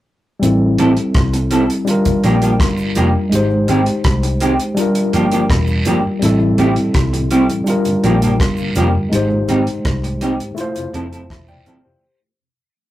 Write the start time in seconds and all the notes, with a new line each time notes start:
0.40 A1 G3 C4, closed hi-hat, cabasa
0.44 E4 A4
0.78 A1 G3 C4 E4 A4, closed hi-hat, cabasa
0.97 closed hi-hat
1.14 C2, kick, cross-stick, closed hi-hat
1.33 muted clean electric guitar stroke, closed hi-hat
1.51 G3 C4 E4 A4, closed hi-hat, cabasa
1.70 closed hi-hat, cabasa
1.85 G3 D4 F4, closed hi-hat, cabasa
1.91 A#4
2.05 kick, closed hi-hat, cabasa
2.24 A#1 F3 A#3 D4 G4, closed hi-hat, cabasa
2.42 F3 A#3 D4 G4, closed hi-hat, cabasa
2.60 G1, kick, cross-stick, closed hi-hat, long guiro
2.77 cabasa
2.95 F1 F3 A#3 D4 G4, closed hi-hat, cabasa
3.29 G#1 G#3 D#4 G4, closed hi-hat, cabasa
3.35 C5
3.68 G#1 D#3 G#3 C4 G4, closed hi-hat, cabasa
3.86 closed hi-hat
4.04 C2, kick, cross-stick, closed hi-hat
4.23 muted clean electric guitar stroke, closed hi-hat
4.40 D#3 G#3 C4 G4, closed hi-hat, cabasa
4.60 closed hi-hat, cabasa
4.74 G3 D4, closed hi-hat, cabasa
4.79 F4 A#4
4.95 closed hi-hat, cabasa
5.13 G1 F3 A#3 D4 G4, closed hi-hat, cabasa
5.32 F3 A#3 D4 G4, closed hi-hat, cabasa
5.50 E1, kick, cross-stick, closed hi-hat, long guiro
5.67 cabasa
5.85 G1 F3 A#3 D4 G4, closed hi-hat, cabasa
6.19 A1 G3 C4, closed hi-hat, cabasa
6.23 E4 A4
6.41 A2 E3
6.58 A1 G3 A3 C4 E4 G4, closed hi-hat, cabasa
6.76 A2 E3, closed hi-hat
6.94 C2, kick, cross-stick, closed hi-hat
7.13 A2 E3, muted clean electric guitar stroke, closed hi-hat
7.30 G3 A3 C4 E4 G4, closed hi-hat, cabasa
7.49 A2 E3, closed hi-hat, cabasa
7.64 G3 D4 F4, closed hi-hat, cabasa
7.70 A#4
7.85 G2 D3, closed hi-hat, cabasa
8.03 A#1 F3 G3 A#3 D4 F4 G4, closed hi-hat, cabasa
8.22 G2 D3 F3 A#3 D4 G4, closed hi-hat, cabasa
8.40 G1, kick, cross-stick, closed hi-hat, long guiro
8.57 G2 D3, cabasa
8.75 F1 F3 G3 A#3 D4 F4 G4, closed hi-hat, cabasa
8.95 G2 D3
9.09 G#1 G#3 D#4 G4, closed hi-hat, cabasa
9.15 C5
9.31 G#2 D#3
9.48 G#1 G3 G#3 C4 D#4 G4, closed hi-hat, cabasa
9.67 G#2 D#3, closed hi-hat
9.85 C2, kick, cross-stick, closed hi-hat
10.03 G#2 D#3, muted clean electric guitar stroke, closed hi-hat
10.21 G3 G#3 C4 D#4 G4, closed hi-hat, cabasa
10.40 G#2 D#3, closed hi-hat, cabasa
10.55 A3 E4 F4, closed hi-hat, cabasa
10.61 C5
10.75 F2 C3, closed hi-hat, cabasa
10.94 F1 F3 A3 C4 E4 A4, closed hi-hat, cabasa
11.12 F2 C3 F3 C4 E4 A4, closed hi-hat, cabasa
11.30 E1 E5 A5, kick, cross-stick, closed hi-hat, long guiro
11.48 F2 C3 D5 G5, cabasa
11.66 G1 F3 A3 C4 E4 A4 C5 F5, closed hi-hat, cabasa
11.85 F2 C3 G4 C5